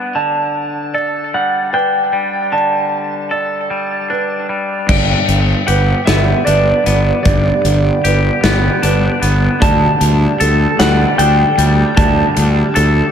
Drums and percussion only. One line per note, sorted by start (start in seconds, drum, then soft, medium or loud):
4.89 kick medium
4.89 crash medium
5.29 closed hi-hat soft
5.68 closed hi-hat soft
6.07 snare medium
6.07 closed hi-hat medium
6.47 closed hi-hat soft
6.86 closed hi-hat soft
7.25 kick medium
7.25 closed hi-hat medium
7.65 closed hi-hat soft
8.05 closed hi-hat soft
8.44 snare medium
8.44 closed hi-hat medium
8.83 closed hi-hat soft
9.23 closed hi-hat soft
9.62 kick medium
9.62 closed hi-hat medium
10.01 closed hi-hat medium
10.41 closed hi-hat medium
10.80 snare medium
10.80 closed hi-hat medium
11.19 closed hi-hat medium
11.59 closed hi-hat medium
11.97 kick loud
11.97 closed hi-hat medium
12.37 closed hi-hat soft
12.76 closed hi-hat soft